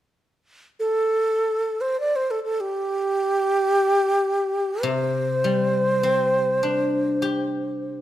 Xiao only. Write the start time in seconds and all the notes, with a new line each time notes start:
0.80 A4
1.81 C5
2.00 D5
2.16 C5
2.31 A4
2.44 A4
2.60 G4
4.83 C5